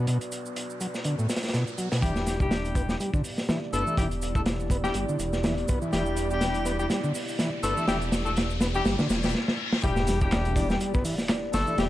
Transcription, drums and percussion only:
0.07 closed hi-hat, shaker
0.21 closed hi-hat, shaker
0.32 closed hi-hat, shaker
0.46 shaker
0.56 closed hi-hat, shaker
0.70 shaker
0.81 closed hi-hat, shaker
0.94 snare, shaker
1.04 closed hi-hat, shaker
1.19 shaker
1.29 snare, closed hi-hat, shaker
1.36 snare, closed hi-hat
1.43 snare, closed hi-hat, shaker
1.48 snare, closed hi-hat
1.53 snare, closed hi-hat, shaker
1.67 closed hi-hat, shaker
1.78 closed hi-hat, shaker
1.92 snare, closed hi-hat, shaker
2.02 kick, closed hi-hat, shaker
2.16 snare, shaker
2.27 snare, closed hi-hat, shaker
2.40 kick, shaker
2.51 snare, closed hi-hat, shaker
2.65 closed hi-hat, shaker
2.75 kick, closed hi-hat, shaker
2.89 snare, shaker
3.00 closed hi-hat, shaker
3.14 kick, shaker
3.24 open hi-hat, shaker
3.38 snare, shaker
3.49 snare, closed hi-hat, shaker
3.73 closed hi-hat, shaker
3.87 shaker
3.97 kick, closed hi-hat, shaker
4.11 closed hi-hat, shaker
4.22 closed hi-hat, shaker
4.35 kick, shaker
4.46 snare, closed hi-hat, shaker
4.60 shaker
4.70 kick, closed hi-hat, shaker
4.84 snare, shaker
4.94 closed hi-hat, shaker
5.09 shaker
5.19 closed hi-hat, shaker
5.33 snare, shaker
5.44 snare, closed hi-hat, shaker
5.58 closed hi-hat
5.68 kick, closed hi-hat, shaker
5.82 shaker
5.93 snare, closed hi-hat, shaker
6.06 shaker
6.17 closed hi-hat, shaker
6.30 shaker
6.41 snare, closed hi-hat, shaker
6.54 closed hi-hat, shaker
6.66 closed hi-hat, shaker
6.79 shaker
6.90 snare, closed hi-hat, shaker
7.04 shaker
7.15 open hi-hat, shaker
7.28 shaker
7.39 snare, closed hi-hat, shaker
7.63 closed hi-hat, shaker
7.77 shaker
7.88 snare, closed hi-hat, shaker
8.02 closed hi-hat, shaker
8.12 snare, closed hi-hat, shaker
8.26 shaker
8.37 snare, closed hi-hat, shaker
8.50 shaker
8.61 snare, closed hi-hat, shaker
8.74 shaker
8.85 snare, closed hi-hat, shaker
8.99 snare, shaker
9.10 snare, closed hi-hat, shaker
9.23 snare, closed hi-hat, shaker
9.29 closed hi-hat
9.35 snare
9.48 snare
9.73 snare
9.83 kick, closed hi-hat, shaker
9.96 snare, shaker
10.07 snare, closed hi-hat, open hi-hat, shaker
10.21 kick, shaker
10.32 snare, clap, closed hi-hat, shaker
10.45 closed hi-hat, shaker
10.56 kick, closed hi-hat, open hi-hat, shaker
10.70 snare, shaker
10.81 closed hi-hat, shaker
10.94 kick, shaker
11.05 open hi-hat, shaker
11.18 snare, shaker
11.29 snare, clap, closed hi-hat, shaker
11.53 snare, closed hi-hat, open hi-hat, shaker
11.67 shaker
11.78 snare, closed hi-hat, shaker

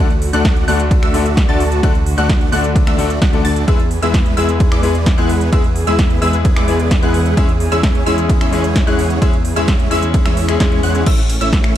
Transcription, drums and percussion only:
0.10 closed hi-hat
0.22 open hi-hat
0.33 closed hi-hat
0.45 kick, snare, closed hi-hat, ride
0.57 closed hi-hat
0.68 open hi-hat
0.80 closed hi-hat
0.91 kick, closed hi-hat, ride
1.03 finger snap, closed hi-hat
1.14 open hi-hat
1.26 closed hi-hat
1.37 kick, snare, closed hi-hat, ride
1.49 closed hi-hat
1.60 open hi-hat
1.72 closed hi-hat
1.83 kick, closed hi-hat, ride
1.95 closed hi-hat
2.06 open hi-hat
2.18 closed hi-hat
2.29 kick, snare, closed hi-hat, ride
2.41 closed hi-hat
2.52 open hi-hat
2.64 closed hi-hat
2.76 kick, closed hi-hat, ride
2.87 finger snap, snare, closed hi-hat
2.99 open hi-hat
3.10 closed hi-hat
3.22 kick, snare, closed hi-hat, ride
3.33 closed hi-hat
3.45 open hi-hat
3.56 closed hi-hat
3.68 kick, closed hi-hat, ride
3.79 closed hi-hat
3.91 open hi-hat
4.02 closed hi-hat
4.14 kick, snare, closed hi-hat, ride
4.26 closed hi-hat
4.37 open hi-hat
4.49 closed hi-hat
4.60 kick, closed hi-hat, ride
4.72 finger snap, closed hi-hat
4.83 open hi-hat
4.95 closed hi-hat
5.06 kick, snare, closed hi-hat, ride
5.18 closed hi-hat
5.29 open hi-hat
5.41 closed hi-hat
5.53 kick, closed hi-hat, ride
5.64 closed hi-hat
5.76 open hi-hat
5.87 closed hi-hat
5.99 kick, snare, closed hi-hat, ride
6.10 closed hi-hat
6.22 open hi-hat
6.33 closed hi-hat
6.45 kick, closed hi-hat, ride
6.56 finger snap, snare, closed hi-hat
6.68 open hi-hat
6.80 closed hi-hat
6.91 kick, snare, closed hi-hat, ride
7.03 closed hi-hat
7.14 open hi-hat
7.26 closed hi-hat
7.37 kick, closed hi-hat, ride
7.49 closed hi-hat
7.60 open hi-hat
7.72 closed hi-hat
7.83 kick, snare, closed hi-hat, ride
7.95 closed hi-hat
8.06 open hi-hat
8.18 closed hi-hat
8.29 kick, closed hi-hat, ride
8.41 finger snap, closed hi-hat
8.53 open hi-hat
8.64 closed hi-hat
8.76 kick, snare, closed hi-hat, ride
8.87 closed hi-hat
8.99 open hi-hat
9.10 closed hi-hat
9.22 kick, closed hi-hat, ride
9.33 closed hi-hat
9.45 open hi-hat
9.56 closed hi-hat
9.68 kick, snare, closed hi-hat, ride
9.79 closed hi-hat
9.91 open hi-hat
10.03 closed hi-hat
10.14 kick, closed hi-hat, ride
10.26 finger snap, snare, closed hi-hat
10.37 open hi-hat
10.49 finger snap, closed hi-hat
10.60 kick, snare, closed hi-hat, ride
10.72 closed hi-hat
10.83 open hi-hat
10.95 closed hi-hat
11.06 kick, closed hi-hat, crash, ride
11.18 closed hi-hat
11.29 open hi-hat, ride
11.41 closed hi-hat
11.53 kick, snare, closed hi-hat, ride
11.64 finger snap, closed hi-hat

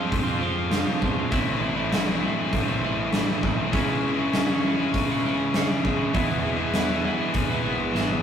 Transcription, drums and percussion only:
0.12 kick, open hi-hat
0.71 snare, open hi-hat
1.02 kick
1.32 kick, open hi-hat
1.93 snare, open hi-hat
2.53 kick, open hi-hat
3.13 snare, open hi-hat
3.43 kick
3.73 kick, open hi-hat
4.33 snare, open hi-hat
4.94 kick, open hi-hat
5.54 snare, open hi-hat
5.85 kick
6.15 kick, open hi-hat
6.74 snare, open hi-hat
7.34 kick, open hi-hat
7.95 snare
8.09 high tom

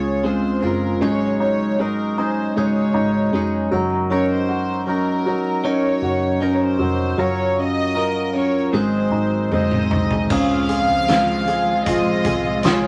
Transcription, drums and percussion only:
9.52 high tom
9.71 mid tom
9.91 mid tom
10.11 floor tom
10.30 kick, crash
10.69 closed hi-hat
11.08 snare, closed hi-hat
11.47 closed hi-hat
11.86 kick, closed hi-hat
12.25 kick, closed hi-hat
12.63 snare, closed hi-hat

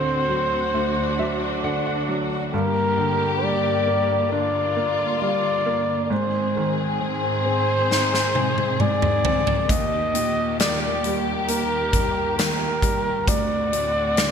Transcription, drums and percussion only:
7.91 snare
8.14 snare
8.35 high tom
8.58 high tom
8.80 mid tom
9.02 mid tom
9.25 floor tom
9.47 floor tom
9.69 kick, closed hi-hat
10.15 closed hi-hat
10.60 snare, closed hi-hat
11.04 closed hi-hat
11.48 closed hi-hat
11.93 kick, closed hi-hat
12.39 snare, closed hi-hat
12.82 kick, closed hi-hat
13.28 kick, closed hi-hat
13.73 closed hi-hat
14.17 snare, closed hi-hat

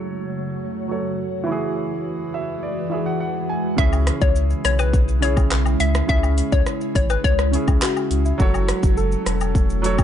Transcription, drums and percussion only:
3.78 kick, shaker
3.93 high woodblock, shaker
4.07 cross-stick, closed hi-hat, cabasa, shaker
4.21 kick, shaker
4.36 shaker
4.50 shaker
4.65 cross-stick, closed hi-hat, cabasa, shaker
4.79 high woodblock, shaker
4.93 kick, shaker
5.08 shaker
5.23 closed hi-hat, cabasa, shaker
5.37 kick, high woodblock, shaker
5.51 cross-stick, clap, shaker
5.66 high woodblock, shaker
5.80 closed hi-hat, cabasa, shaker
5.95 cross-stick, shaker
6.09 kick, shaker
6.23 high woodblock, shaker
6.38 closed hi-hat, cabasa, shaker
6.52 kick, shaker
6.66 cross-stick, shaker
6.81 shaker
6.95 kick, closed hi-hat, cabasa, shaker
7.10 high woodblock, shaker
7.24 kick, shaker
7.39 cross-stick, shaker
7.53 closed hi-hat, cabasa, shaker
7.68 kick, high woodblock, shaker
7.82 cross-stick, clap, shaker
7.97 high woodblock, shaker
8.11 closed hi-hat, cabasa, shaker
8.25 shaker
8.40 kick, shaker
8.54 high woodblock, shaker
8.68 cross-stick, closed hi-hat, cabasa, shaker
8.83 kick, shaker
8.97 shaker
9.12 shaker
9.26 cross-stick, closed hi-hat, cabasa, shaker
9.41 high woodblock, shaker
9.55 kick, shaker
9.70 shaker
9.84 closed hi-hat, cabasa, shaker
9.98 kick, high woodblock, shaker

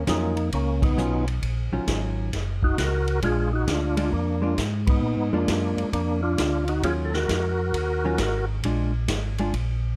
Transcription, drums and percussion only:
0.07 kick, snare, hi-hat pedal, ride
0.37 ride
0.52 kick, ride
0.82 kick, ride
0.98 hi-hat pedal
1.28 ride
1.42 kick, ride
1.87 kick, snare, hi-hat pedal, ride
2.33 kick, snare, ride
2.63 kick
2.78 kick, snare, hi-hat pedal, ride
3.08 ride
3.22 kick, ride
3.67 kick, snare, hi-hat pedal, ride
3.97 ride
4.12 kick
4.58 kick, snare, hi-hat pedal, ride
4.87 kick, ride
5.48 kick, snare, hi-hat pedal, ride
5.78 ride
5.93 kick, ride
6.38 kick, snare, hi-hat pedal, ride
6.68 ride
6.83 kick, ride
7.14 snare
7.29 kick, snare, hi-hat pedal, ride
7.74 kick, ride
8.18 kick, snare, hi-hat pedal, ride
8.63 kick, ride
9.08 kick, snare, hi-hat pedal, ride
9.38 ride
9.54 kick, ride

